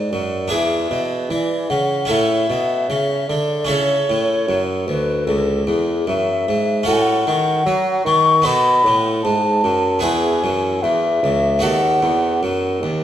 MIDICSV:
0, 0, Header, 1, 4, 480
1, 0, Start_track
1, 0, Tempo, 792602
1, 316, Time_signature, 4, 2, 24, 8
1, 7895, End_track
2, 0, Start_track
2, 0, Title_t, "Flute"
2, 0, Program_c, 0, 73
2, 0, Note_on_c, 0, 74, 59
2, 316, Note_off_c, 0, 74, 0
2, 324, Note_on_c, 0, 76, 66
2, 625, Note_off_c, 0, 76, 0
2, 797, Note_on_c, 0, 74, 61
2, 1030, Note_on_c, 0, 78, 57
2, 1039, Note_off_c, 0, 74, 0
2, 1277, Note_on_c, 0, 76, 67
2, 1286, Note_off_c, 0, 78, 0
2, 1989, Note_off_c, 0, 76, 0
2, 1992, Note_on_c, 0, 74, 66
2, 2229, Note_off_c, 0, 74, 0
2, 2237, Note_on_c, 0, 73, 69
2, 2798, Note_off_c, 0, 73, 0
2, 2951, Note_on_c, 0, 71, 67
2, 3182, Note_on_c, 0, 69, 65
2, 3191, Note_off_c, 0, 71, 0
2, 3429, Note_off_c, 0, 69, 0
2, 3433, Note_on_c, 0, 68, 58
2, 3678, Note_on_c, 0, 76, 70
2, 3687, Note_off_c, 0, 68, 0
2, 4160, Note_on_c, 0, 78, 78
2, 4169, Note_off_c, 0, 76, 0
2, 4198, Note_on_c, 0, 80, 58
2, 4207, Note_off_c, 0, 78, 0
2, 4253, Note_on_c, 0, 78, 72
2, 4262, Note_off_c, 0, 80, 0
2, 4880, Note_off_c, 0, 78, 0
2, 4883, Note_on_c, 0, 85, 78
2, 5120, Note_on_c, 0, 83, 83
2, 5129, Note_off_c, 0, 85, 0
2, 5432, Note_off_c, 0, 83, 0
2, 5592, Note_on_c, 0, 81, 76
2, 6051, Note_off_c, 0, 81, 0
2, 6068, Note_on_c, 0, 80, 82
2, 6555, Note_on_c, 0, 76, 74
2, 6564, Note_off_c, 0, 80, 0
2, 7040, Note_on_c, 0, 78, 79
2, 7049, Note_off_c, 0, 76, 0
2, 7521, Note_off_c, 0, 78, 0
2, 7895, End_track
3, 0, Start_track
3, 0, Title_t, "Harpsichord"
3, 0, Program_c, 1, 6
3, 0, Note_on_c, 1, 62, 41
3, 0, Note_on_c, 1, 66, 37
3, 0, Note_on_c, 1, 69, 37
3, 78, Note_on_c, 1, 42, 40
3, 280, Note_off_c, 1, 62, 0
3, 284, Note_off_c, 1, 66, 0
3, 289, Note_off_c, 1, 69, 0
3, 289, Note_on_c, 1, 62, 39
3, 293, Note_off_c, 1, 42, 0
3, 297, Note_on_c, 1, 64, 40
3, 305, Note_on_c, 1, 68, 37
3, 316, Note_on_c, 1, 40, 43
3, 531, Note_off_c, 1, 40, 0
3, 552, Note_on_c, 1, 47, 40
3, 769, Note_off_c, 1, 47, 0
3, 791, Note_on_c, 1, 52, 42
3, 1007, Note_off_c, 1, 52, 0
3, 1030, Note_on_c, 1, 49, 46
3, 1234, Note_off_c, 1, 62, 0
3, 1238, Note_off_c, 1, 64, 0
3, 1242, Note_off_c, 1, 68, 0
3, 1244, Note_on_c, 1, 61, 34
3, 1246, Note_off_c, 1, 49, 0
3, 1254, Note_on_c, 1, 64, 38
3, 1264, Note_on_c, 1, 69, 33
3, 1271, Note_on_c, 1, 45, 41
3, 1486, Note_off_c, 1, 45, 0
3, 1513, Note_on_c, 1, 47, 42
3, 1728, Note_off_c, 1, 47, 0
3, 1756, Note_on_c, 1, 49, 44
3, 1970, Note_off_c, 1, 49, 0
3, 1996, Note_on_c, 1, 50, 37
3, 2195, Note_off_c, 1, 61, 0
3, 2200, Note_off_c, 1, 64, 0
3, 2205, Note_off_c, 1, 69, 0
3, 2208, Note_on_c, 1, 61, 41
3, 2212, Note_off_c, 1, 50, 0
3, 2219, Note_on_c, 1, 64, 41
3, 2228, Note_on_c, 1, 69, 45
3, 2237, Note_on_c, 1, 49, 50
3, 2452, Note_off_c, 1, 49, 0
3, 2481, Note_on_c, 1, 45, 47
3, 2692, Note_off_c, 1, 45, 0
3, 2717, Note_on_c, 1, 42, 40
3, 2930, Note_off_c, 1, 42, 0
3, 2955, Note_on_c, 1, 38, 44
3, 3171, Note_off_c, 1, 38, 0
3, 3195, Note_on_c, 1, 37, 41
3, 3415, Note_off_c, 1, 37, 0
3, 3436, Note_on_c, 1, 40, 47
3, 3658, Note_off_c, 1, 40, 0
3, 3678, Note_on_c, 1, 42, 42
3, 3898, Note_off_c, 1, 42, 0
3, 3927, Note_on_c, 1, 44, 44
3, 4127, Note_off_c, 1, 61, 0
3, 4132, Note_off_c, 1, 64, 0
3, 4137, Note_off_c, 1, 69, 0
3, 4138, Note_on_c, 1, 61, 48
3, 4141, Note_off_c, 1, 44, 0
3, 4147, Note_on_c, 1, 66, 45
3, 4153, Note_on_c, 1, 69, 45
3, 4166, Note_on_c, 1, 45, 53
3, 4379, Note_off_c, 1, 45, 0
3, 4405, Note_on_c, 1, 51, 42
3, 4618, Note_off_c, 1, 51, 0
3, 4643, Note_on_c, 1, 54, 45
3, 4856, Note_off_c, 1, 54, 0
3, 4884, Note_on_c, 1, 51, 52
3, 5082, Note_off_c, 1, 61, 0
3, 5086, Note_off_c, 1, 66, 0
3, 5089, Note_off_c, 1, 69, 0
3, 5097, Note_off_c, 1, 51, 0
3, 5099, Note_on_c, 1, 59, 40
3, 5107, Note_on_c, 1, 63, 35
3, 5117, Note_on_c, 1, 69, 39
3, 5127, Note_on_c, 1, 47, 50
3, 5339, Note_off_c, 1, 47, 0
3, 5368, Note_on_c, 1, 45, 54
3, 5580, Note_off_c, 1, 45, 0
3, 5601, Note_on_c, 1, 44, 49
3, 5816, Note_off_c, 1, 44, 0
3, 5839, Note_on_c, 1, 42, 40
3, 6045, Note_off_c, 1, 59, 0
3, 6049, Note_off_c, 1, 63, 0
3, 6052, Note_on_c, 1, 59, 47
3, 6054, Note_off_c, 1, 69, 0
3, 6055, Note_off_c, 1, 42, 0
3, 6059, Note_on_c, 1, 64, 47
3, 6069, Note_on_c, 1, 68, 44
3, 6078, Note_on_c, 1, 40, 48
3, 6295, Note_off_c, 1, 40, 0
3, 6298, Note_off_c, 1, 59, 0
3, 6321, Note_on_c, 1, 42, 54
3, 6538, Note_off_c, 1, 42, 0
3, 6565, Note_on_c, 1, 40, 51
3, 6780, Note_off_c, 1, 40, 0
3, 6807, Note_on_c, 1, 37, 50
3, 7007, Note_off_c, 1, 64, 0
3, 7011, Note_off_c, 1, 68, 0
3, 7019, Note_on_c, 1, 59, 44
3, 7020, Note_off_c, 1, 37, 0
3, 7026, Note_on_c, 1, 66, 38
3, 7036, Note_on_c, 1, 69, 43
3, 7045, Note_on_c, 1, 39, 43
3, 7259, Note_off_c, 1, 39, 0
3, 7282, Note_on_c, 1, 40, 51
3, 7498, Note_off_c, 1, 40, 0
3, 7527, Note_on_c, 1, 42, 44
3, 7740, Note_off_c, 1, 42, 0
3, 7770, Note_on_c, 1, 39, 45
3, 7895, Note_off_c, 1, 39, 0
3, 7895, Note_off_c, 1, 59, 0
3, 7895, Note_off_c, 1, 66, 0
3, 7895, Note_off_c, 1, 69, 0
3, 7895, End_track
4, 0, Start_track
4, 0, Title_t, "Bassoon"
4, 0, Program_c, 2, 70
4, 0, Note_on_c, 2, 44, 47
4, 67, Note_on_c, 2, 42, 47
4, 76, Note_off_c, 2, 44, 0
4, 305, Note_off_c, 2, 42, 0
4, 308, Note_on_c, 2, 40, 54
4, 544, Note_off_c, 2, 40, 0
4, 548, Note_on_c, 2, 47, 47
4, 790, Note_on_c, 2, 52, 48
4, 799, Note_off_c, 2, 47, 0
4, 1031, Note_on_c, 2, 49, 51
4, 1040, Note_off_c, 2, 52, 0
4, 1266, Note_off_c, 2, 49, 0
4, 1269, Note_on_c, 2, 45, 56
4, 1505, Note_off_c, 2, 45, 0
4, 1507, Note_on_c, 2, 47, 47
4, 1748, Note_on_c, 2, 49, 51
4, 1757, Note_off_c, 2, 47, 0
4, 1987, Note_off_c, 2, 49, 0
4, 1991, Note_on_c, 2, 50, 53
4, 2229, Note_on_c, 2, 49, 56
4, 2238, Note_off_c, 2, 50, 0
4, 2405, Note_off_c, 2, 49, 0
4, 2478, Note_on_c, 2, 45, 53
4, 2706, Note_off_c, 2, 45, 0
4, 2710, Note_on_c, 2, 42, 55
4, 2951, Note_on_c, 2, 38, 50
4, 2960, Note_off_c, 2, 42, 0
4, 3186, Note_off_c, 2, 38, 0
4, 3189, Note_on_c, 2, 37, 55
4, 3429, Note_off_c, 2, 37, 0
4, 3432, Note_on_c, 2, 40, 52
4, 3676, Note_off_c, 2, 40, 0
4, 3679, Note_on_c, 2, 42, 52
4, 3921, Note_on_c, 2, 44, 51
4, 3930, Note_off_c, 2, 42, 0
4, 4158, Note_off_c, 2, 44, 0
4, 4162, Note_on_c, 2, 45, 59
4, 4396, Note_off_c, 2, 45, 0
4, 4404, Note_on_c, 2, 51, 55
4, 4636, Note_off_c, 2, 51, 0
4, 4640, Note_on_c, 2, 54, 59
4, 4871, Note_off_c, 2, 54, 0
4, 4874, Note_on_c, 2, 51, 58
4, 5119, Note_on_c, 2, 47, 59
4, 5128, Note_off_c, 2, 51, 0
4, 5351, Note_off_c, 2, 47, 0
4, 5355, Note_on_c, 2, 45, 61
4, 5591, Note_off_c, 2, 45, 0
4, 5595, Note_on_c, 2, 44, 50
4, 5832, Note_off_c, 2, 44, 0
4, 5835, Note_on_c, 2, 42, 61
4, 6070, Note_off_c, 2, 42, 0
4, 6074, Note_on_c, 2, 40, 64
4, 6319, Note_on_c, 2, 42, 66
4, 6328, Note_off_c, 2, 40, 0
4, 6553, Note_off_c, 2, 42, 0
4, 6557, Note_on_c, 2, 40, 57
4, 6794, Note_off_c, 2, 40, 0
4, 6798, Note_on_c, 2, 37, 68
4, 7034, Note_off_c, 2, 37, 0
4, 7041, Note_on_c, 2, 39, 60
4, 7276, Note_off_c, 2, 39, 0
4, 7281, Note_on_c, 2, 40, 62
4, 7521, Note_on_c, 2, 42, 57
4, 7530, Note_off_c, 2, 40, 0
4, 7757, Note_on_c, 2, 39, 56
4, 7766, Note_off_c, 2, 42, 0
4, 7895, Note_off_c, 2, 39, 0
4, 7895, End_track
0, 0, End_of_file